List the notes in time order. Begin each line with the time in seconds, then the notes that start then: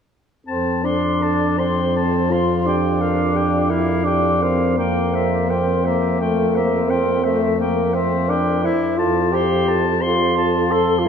0.46 F2 C4 A4 A5
0.84 D4 C5 C6
1.22 A4 A5
1.58 C4 C5 C6
1.95 A4 A5
2.30 F4 C5 C6
2.65 D4 G4 G5
3.01 A#4 F5
3.35 G4 G5
3.69 E4 A#4 F5
4.04 D4 G4 G5
4.42 C4 A#4 F5
4.77 F2 A#3 A#4 G5
5.14 C5 E5
5.50 C4 A#4 G5
5.84 A#3 C5 E5
6.20 A3 A#4 G5
6.55 A#3 C5 E5
6.89 C4 A#4 G5
7.23 A3 C5 E5
7.59 A#3 A#4 G5
7.94 C4 C5 E5
8.28 D4 A#4 G5
8.63 E4 C5 E5
8.98 F2 F4 A4 A5
9.32 G4 C5 C6
9.68 A4 A5
10.01 F4 C5 C6
10.37 A4 A5
10.71 A4 C5 C6
10.99 F4
11.05 E4 A#4